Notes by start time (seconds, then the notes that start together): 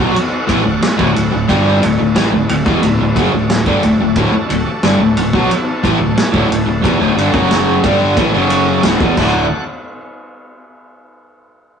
Already playing: B2 F#4 A4 D5 F#5
0.00 B1 F#3
0.14 muted overdriven electric guitar stroke, muted fingered electric bass stroke, muted distorted electric guitar stroke, ride
0.47 A1 A2 E3, kick, ride
0.63 D1 D2 A2
0.82 muted overdriven electric guitar stroke, muted distorted electric guitar stroke, snare, ride
0.97 D1 D2 A2, kick
1.15 D1 D2 A2, ride
1.32 D1 D2 A2
1.48 G1 G2 D3 G3 F#4 A4 D5, kick, ride
1.82 D1 D2 A2, ride
1.99 D1 D2 A2
2.15 A1 A2 E3, snare, ride
2.32 D1 D2 A2
2.49 D1 D2 A2, ride
2.65 E1 E2 B2, kick
2.82 D1 D2 A2, ride
2.99 D1 D2 A2
3.15 F#1 F#2 C#3, kick, ride
3.33 D1 D2 A2
3.50 snare, ride
3.66 G1 G2 D3, kick
3.83 D1 D2 A2, ride
4.00 D1 D2 A2
4.16 D1 D2 A2 D4 F#4 A4, kick, ride
4.33 muted distorted electric guitar stroke, muted overdriven electric guitar stroke
4.50 D1 D2 A2, ride
4.66 muted distorted electric guitar stroke, muted overdriven electric guitar stroke
4.83 G1 G2 D3, snare, ride
5.00 D1 D2 A2
5.17 D1 D2 A2, ride
5.33 B1 B2 F#3, kick
5.50 muted distorted electric guitar stroke, muted fingered electric bass stroke, muted overdriven electric guitar stroke, ride
5.83 A1 A2 E3, kick, ride
6.00 D1 D2 A2
6.16 muted distorted electric guitar stroke, muted fingered electric bass stroke, muted overdriven electric guitar stroke, snare, ride
6.34 D1 D2 A2, kick
6.50 D1 D2 A2, ride
6.67 D1 D2 A2
6.83 E1 E2 B2 F#4 A4 D5, kick, ride
7.00 D1 D2 A2
7.17 G1 G2 D3, ride
7.34 F#1 F#2 C#3 F#3, kick
7.51 snare, ride
7.84 G1 G2 D3 G3, kick, ride
8.17 A1 A2 E3, kick, ride
8.33 F#1 F#2 C#3 F#3
8.50 ride
8.83 D1 D2 A2, snare, ride
9.00 E1 E2 B2, kick
9.17 D1 D2 A2 D3 F#4 A4 D5 F#5, kick, crash